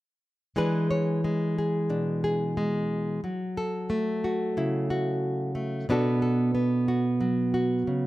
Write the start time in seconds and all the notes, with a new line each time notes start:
0.56 E3 G#3 D4 G#4 B4
0.91 C#5
1.24 G#3
1.58 G#4
1.90 B2 D4
2.24 G#4
2.57 G#3
3.24 F#3
3.57 A4
3.90 A3
4.24 F#4
4.57 C#3 E4
4.90 F#4
5.55 A3
5.89 B2 B3 D4 F#4 A4
6.22 A4
6.55 B3
6.88 F#4
7.21 F#3
7.54 F#4
7.87 C#3